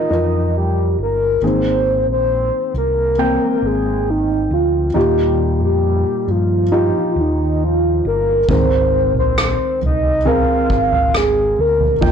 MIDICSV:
0, 0, Header, 1, 5, 480
1, 0, Start_track
1, 0, Tempo, 882353
1, 777, Time_signature, 4, 2, 24, 8
1, 6592, End_track
2, 0, Start_track
2, 0, Title_t, "Soft synth lead"
2, 0, Program_c, 0, 80
2, 0, Note_on_c, 0, 75, 78
2, 300, Note_off_c, 0, 75, 0
2, 312, Note_on_c, 0, 67, 84
2, 528, Note_off_c, 0, 67, 0
2, 560, Note_on_c, 0, 70, 75
2, 772, Note_off_c, 0, 70, 0
2, 795, Note_on_c, 0, 72, 83
2, 1124, Note_off_c, 0, 72, 0
2, 1155, Note_on_c, 0, 72, 85
2, 1484, Note_off_c, 0, 72, 0
2, 1510, Note_on_c, 0, 70, 80
2, 1993, Note_on_c, 0, 68, 84
2, 2002, Note_off_c, 0, 70, 0
2, 2231, Note_on_c, 0, 63, 81
2, 2239, Note_off_c, 0, 68, 0
2, 2464, Note_off_c, 0, 63, 0
2, 2467, Note_on_c, 0, 65, 72
2, 2686, Note_off_c, 0, 65, 0
2, 2712, Note_on_c, 0, 67, 95
2, 3043, Note_off_c, 0, 67, 0
2, 3071, Note_on_c, 0, 67, 86
2, 3432, Note_on_c, 0, 65, 86
2, 3441, Note_off_c, 0, 67, 0
2, 3918, Note_on_c, 0, 63, 80
2, 3926, Note_off_c, 0, 65, 0
2, 4155, Note_on_c, 0, 65, 93
2, 4164, Note_off_c, 0, 63, 0
2, 4386, Note_off_c, 0, 65, 0
2, 4390, Note_on_c, 0, 70, 93
2, 4607, Note_off_c, 0, 70, 0
2, 4628, Note_on_c, 0, 72, 98
2, 4961, Note_off_c, 0, 72, 0
2, 4999, Note_on_c, 0, 72, 93
2, 5100, Note_off_c, 0, 72, 0
2, 5121, Note_on_c, 0, 72, 95
2, 5333, Note_off_c, 0, 72, 0
2, 5365, Note_on_c, 0, 75, 97
2, 5590, Note_on_c, 0, 77, 111
2, 5599, Note_off_c, 0, 75, 0
2, 5944, Note_off_c, 0, 77, 0
2, 5952, Note_on_c, 0, 77, 95
2, 6074, Note_on_c, 0, 68, 105
2, 6082, Note_off_c, 0, 77, 0
2, 6313, Note_on_c, 0, 70, 100
2, 6321, Note_off_c, 0, 68, 0
2, 6592, Note_off_c, 0, 70, 0
2, 6592, End_track
3, 0, Start_track
3, 0, Title_t, "Grand piano"
3, 0, Program_c, 1, 0
3, 0, Control_c, 1, 64, 127
3, 0, Note_on_c, 1, 63, 65
3, 0, Note_on_c, 1, 65, 54
3, 0, Note_on_c, 1, 70, 65
3, 53, Note_off_c, 1, 63, 0
3, 53, Note_on_c, 1, 63, 54
3, 57, Note_off_c, 1, 65, 0
3, 57, Note_on_c, 1, 65, 47
3, 64, Note_off_c, 1, 70, 0
3, 64, Note_on_c, 1, 70, 56
3, 739, Note_off_c, 1, 63, 0
3, 741, Note_off_c, 1, 65, 0
3, 745, Note_off_c, 1, 70, 0
3, 776, Note_on_c, 1, 58, 57
3, 778, Note_on_c, 1, 51, 46
3, 779, Note_on_c, 1, 44, 49
3, 779, Note_on_c, 1, 60, 51
3, 783, Control_c, 1, 64, 0
3, 783, Note_on_c, 1, 68, 63
3, 867, Control_c, 1, 64, 127
3, 1476, Note_off_c, 1, 44, 0
3, 1476, Note_off_c, 1, 51, 0
3, 1688, Note_off_c, 1, 58, 0
3, 1690, Note_off_c, 1, 60, 0
3, 1692, Note_off_c, 1, 68, 0
3, 1731, Note_on_c, 1, 58, 62
3, 1734, Note_on_c, 1, 60, 58
3, 1737, Note_on_c, 1, 79, 70
3, 2646, Note_off_c, 1, 58, 0
3, 2648, Note_off_c, 1, 60, 0
3, 2649, Note_off_c, 1, 79, 0
3, 2688, Note_on_c, 1, 63, 63
3, 2693, Note_on_c, 1, 65, 57
3, 2694, Note_on_c, 1, 46, 48
3, 2696, Note_on_c, 1, 67, 63
3, 2705, Control_c, 1, 64, 0
3, 2807, Control_c, 1, 64, 127
3, 3394, Note_off_c, 1, 46, 0
3, 3605, Note_off_c, 1, 63, 0
3, 3607, Note_off_c, 1, 65, 0
3, 3608, Note_off_c, 1, 67, 0
3, 3654, Note_on_c, 1, 63, 67
3, 3656, Note_on_c, 1, 65, 62
3, 3658, Note_on_c, 1, 67, 72
3, 4568, Note_off_c, 1, 63, 0
3, 4569, Note_off_c, 1, 65, 0
3, 4570, Note_off_c, 1, 67, 0
3, 4617, Note_on_c, 1, 60, 57
3, 4619, Note_on_c, 1, 44, 55
3, 4619, Note_on_c, 1, 68, 59
3, 4621, Note_on_c, 1, 51, 55
3, 4624, Note_on_c, 1, 70, 67
3, 4625, Control_c, 1, 64, 0
3, 4724, Control_c, 1, 64, 127
3, 5316, Note_off_c, 1, 44, 0
3, 5317, Note_off_c, 1, 51, 0
3, 5529, Note_off_c, 1, 60, 0
3, 5530, Note_off_c, 1, 68, 0
3, 5533, Note_off_c, 1, 70, 0
3, 5577, Note_on_c, 1, 60, 66
3, 5581, Note_on_c, 1, 68, 66
3, 5585, Note_on_c, 1, 70, 78
3, 6489, Note_off_c, 1, 60, 0
3, 6491, Note_off_c, 1, 68, 0
3, 6493, Note_off_c, 1, 70, 0
3, 6533, Note_on_c, 1, 63, 65
3, 6535, Note_on_c, 1, 65, 54
3, 6536, Note_on_c, 1, 46, 55
3, 6541, Note_on_c, 1, 79, 70
3, 6543, Control_c, 1, 64, 0
3, 6592, Note_off_c, 1, 46, 0
3, 6592, Note_off_c, 1, 63, 0
3, 6592, Note_off_c, 1, 65, 0
3, 6592, Note_off_c, 1, 79, 0
3, 6592, End_track
4, 0, Start_track
4, 0, Title_t, "Fingered electric bass"
4, 0, Program_c, 2, 33
4, 58, Note_on_c, 2, 41, 70
4, 516, Note_off_c, 2, 41, 0
4, 535, Note_on_c, 2, 31, 69
4, 759, Note_off_c, 2, 31, 0
4, 769, Note_on_c, 2, 32, 80
4, 1111, Note_off_c, 2, 32, 0
4, 1128, Note_on_c, 2, 34, 63
4, 1355, Note_off_c, 2, 34, 0
4, 1491, Note_on_c, 2, 36, 68
4, 1832, Note_off_c, 2, 36, 0
4, 1970, Note_on_c, 2, 32, 67
4, 2432, Note_off_c, 2, 32, 0
4, 2452, Note_on_c, 2, 38, 82
4, 2678, Note_off_c, 2, 38, 0
4, 2692, Note_on_c, 2, 39, 88
4, 3055, Note_off_c, 2, 39, 0
4, 3055, Note_on_c, 2, 41, 87
4, 3279, Note_off_c, 2, 41, 0
4, 3414, Note_on_c, 2, 43, 68
4, 3754, Note_off_c, 2, 43, 0
4, 3895, Note_on_c, 2, 39, 75
4, 4354, Note_off_c, 2, 39, 0
4, 4378, Note_on_c, 2, 31, 86
4, 4601, Note_off_c, 2, 31, 0
4, 4615, Note_on_c, 2, 32, 99
4, 4954, Note_off_c, 2, 32, 0
4, 4973, Note_on_c, 2, 34, 74
4, 5198, Note_off_c, 2, 34, 0
4, 5340, Note_on_c, 2, 36, 79
4, 5677, Note_off_c, 2, 36, 0
4, 5819, Note_on_c, 2, 32, 74
4, 6276, Note_off_c, 2, 32, 0
4, 6304, Note_on_c, 2, 38, 81
4, 6524, Note_off_c, 2, 38, 0
4, 6540, Note_on_c, 2, 39, 92
4, 6592, Note_off_c, 2, 39, 0
4, 6592, End_track
5, 0, Start_track
5, 0, Title_t, "Drums"
5, 4615, Note_on_c, 9, 43, 101
5, 4617, Note_on_c, 9, 36, 99
5, 4670, Note_off_c, 9, 43, 0
5, 4671, Note_off_c, 9, 36, 0
5, 4977, Note_on_c, 9, 43, 52
5, 5031, Note_off_c, 9, 43, 0
5, 5102, Note_on_c, 9, 37, 104
5, 5157, Note_off_c, 9, 37, 0
5, 5341, Note_on_c, 9, 43, 50
5, 5396, Note_off_c, 9, 43, 0
5, 5581, Note_on_c, 9, 43, 54
5, 5635, Note_off_c, 9, 43, 0
5, 5820, Note_on_c, 9, 36, 69
5, 5875, Note_off_c, 9, 36, 0
5, 5942, Note_on_c, 9, 43, 58
5, 5996, Note_off_c, 9, 43, 0
5, 6063, Note_on_c, 9, 37, 81
5, 6117, Note_off_c, 9, 37, 0
5, 6422, Note_on_c, 9, 43, 54
5, 6476, Note_off_c, 9, 43, 0
5, 6541, Note_on_c, 9, 36, 104
5, 6543, Note_on_c, 9, 43, 100
5, 6592, Note_off_c, 9, 36, 0
5, 6592, Note_off_c, 9, 43, 0
5, 6592, End_track
0, 0, End_of_file